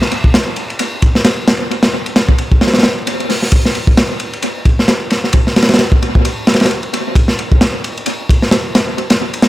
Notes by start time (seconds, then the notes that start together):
0.02 snare
0.11 ride
0.24 kick
0.34 snare, ride
0.56 ride
0.70 ride
0.79 ride
1.02 kick, ride
1.15 snare
1.25 snare, ride
1.48 snare, ride
1.71 ride
1.83 snare, ride
2.06 ride
2.16 snare, ride
2.29 kick
2.38 ride
2.52 kick
2.61 snare, ride
2.67 snare, ride
2.74 snare, ride
2.78 snare, ride
2.83 snare, ride
3.07 ride
3.20 ride
3.30 snare, open hi-hat
3.42 snare
3.52 kick, ride
3.65 snare
3.75 ride
3.87 kick
3.97 snare, ride
4.20 ride
4.33 ride
4.42 ride
4.65 kick, ride
4.79 snare
4.88 snare, ride
5.10 snare, ride
5.24 snare
5.33 kick, ride
5.47 snare
5.56 snare, ride
5.62 snare, ride
5.69 snare, ride
5.74 snare, ride
5.79 snare, ride
5.92 kick
6.02 ride
6.15 kick
6.25 ride
6.47 snare, ride
6.54 snare, ride
6.60 snare, ride
6.65 snare, ride
6.71 ride
6.83 ride
6.94 ride
7.15 kick, ride
7.28 snare
7.39 ride
7.52 kick
7.61 snare, ride
7.84 ride
7.97 ride
8.06 ride
8.29 kick, ride
8.42 snare
8.51 snare, ride
8.75 snare, ride
8.98 ride
9.10 snare, ride
9.34 ride
9.42 snare, ride